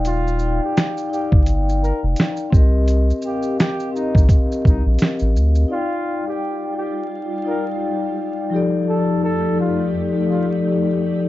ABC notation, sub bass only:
X:1
M:4/4
L:1/16
Q:"Swing 16ths" 1/4=85
K:Eblyd
V:1 name="Sub bass" clef=bass
E,,,4 z3 G,,,4 F,,, z2 C,,2- | C,,2 z4 z B,,, z2 C,, B,,, z A,,, D,,2 | z16 | z16 |]